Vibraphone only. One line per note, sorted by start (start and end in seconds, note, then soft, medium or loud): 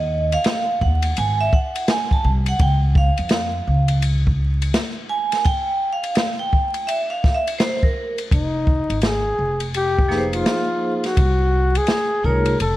0.00 0.35 D#5 medium
0.33 0.83 F5 loud
0.82 1.18 F#5 medium
1.18 1.41 G#5 loud
1.41 1.53 E5 loud
1.53 1.90 F#5 medium
1.89 2.12 G#5 medium
2.13 2.28 A5 loud
2.48 2.60 F#5 loud
2.62 2.77 G5 loud
2.98 4.00 F5 medium
5.09 5.46 G#5 loud
5.45 5.94 G5 loud
5.93 6.37 F5 loud
6.39 6.89 G5 loud
6.87 7.12 E5 medium
7.10 7.36 F5 medium
7.34 7.60 E5 medium
7.59 7.84 C5 medium
7.83 8.16 A#4 medium
10.08 11.11 F3 medium
10.08 11.11 A#3 medium
10.08 11.12 D#4 medium
10.08 11.12 G#4 medium
10.08 10.19 B4 medium
10.18 11.16 C5 medium
12.22 12.51 A3 medium
12.22 12.52 D#4 medium
12.22 12.52 F4 medium
12.22 12.52 G#4 medium
12.22 12.53 C#5 medium